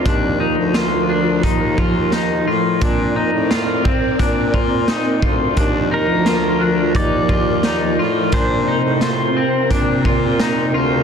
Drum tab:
HH |x-x-x-x-|x-x-x-x-|x-x-x-x-|x-x-x-x-|
SD |--o---o-|--o---o-|--o---o-|--o---o-|
BD |o---oo--|o--ooo-o|o---oo--|o---oo--|